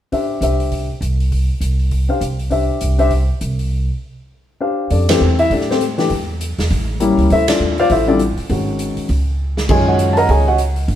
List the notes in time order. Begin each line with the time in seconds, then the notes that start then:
0.12 D4 G4 C5 E5, kick, open hi-hat
0.41 C2 D4 G4 C5 E5, closed hi-hat
0.60 open hi-hat
0.72 kick, open hi-hat
1.01 C2, closed hi-hat
1.20 open hi-hat
1.32 kick, open hi-hat
1.61 C2, closed hi-hat
1.79 open hi-hat
1.91 kick, open hi-hat
2.09 D4 G4 C5 F5
2.21 C2, closed hi-hat
2.39 open hi-hat
2.50 D4 G4 C5 E5, kick, open hi-hat
2.81 C2, closed hi-hat
2.99 D4 G4 C5 E5, open hi-hat
3.11 kick, open hi-hat
3.41 C2, closed hi-hat
3.59 open hi-hat
4.61 D4 G4 C5 F5
4.90 F2 D4 G4 A4 D5, kick, open hi-hat
5.08 E3 A3 C4 D4 G4 A4 C5, snare, ride
5.21 E2
5.39 E4 E5, open hi-hat
5.50 A2 D4 G4 A4 D5, kick, open hi-hat
5.61 snare
5.71 C4 G4 A4 C5, snare
5.81 closed hi-hat
5.98 E3 A3 D4 G4, snare, open hi-hat
6.10 E2, kick, open hi-hat
6.41 closed hi-hat
6.58 E2, snare, open hi-hat
6.70 A1, kick, open hi-hat
7.00 G3 A#3 C#4 E4, closed hi-hat
7.17 C#2, open hi-hat
7.30 D2 E4 A4 C5 E5, kick, open hi-hat
7.48 D4 F4 A4 D5, snare, ride
7.60 D#2
7.78 F4 C5 D5 F5, open hi-hat
7.90 A1 E4 A4 C5 E5, kick, open hi-hat
8.08 D3 G3 C4 D4 E4 F4 A4 D5
8.19 closed hi-hat
8.37 muted upright bass stroke, open hi-hat
8.49 G#1 D#3 G#3 C#4 F#4, kick, open hi-hat
8.79 closed hi-hat
8.97 muted upright bass stroke, open hi-hat
9.09 C#2, kick, open hi-hat
9.57 snare
9.69 F#2 D#3 G#3 C#4 F4 G#4 C#5 D#5 G#5, kick, crash
9.88 F#4 C#5 D#5 F#5
9.99 closed hi-hat
10.13 A5, open hi-hat
10.17 A#4 D#5 F#5 A#5
10.29 C#2 G#4 C#5 D#5 G#5, kick, open hi-hat
10.48 F#4 C#5 D#5 F#5
10.58 closed hi-hat
10.76 open hi-hat
10.88 G1, kick, open hi-hat